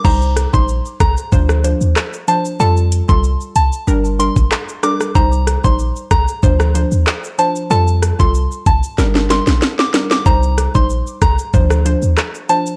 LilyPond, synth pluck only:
\new Staff \with { instrumentName = "Synth pluck" } { \time 4/4 \key c \dorian \tempo 4 = 94 <g ees' c''>8. <g ees' c''>16 r4 <f d' c''>8 <f d' c''>16 r8. <f d' c''>8 | <g f' a'>8. <g f' a'>16 r4 <g d' bes'>8 <g d' bes'>16 r8. <g d' bes'>8 | <g ees' c''>8. <g ees' c''>16 r4 <f d' c''>8 <f d' c''>16 r8. <f d' c''>8 | <g f' a'>8. <g f' a'>16 r4 <g d' bes'>8 <g d' bes'>16 r8. <g d' bes'>8 |
<g ees' c''>8. <g ees' c''>16 r4 <f d' c''>8 <f d' c''>16 r8. <f d' c''>8 | }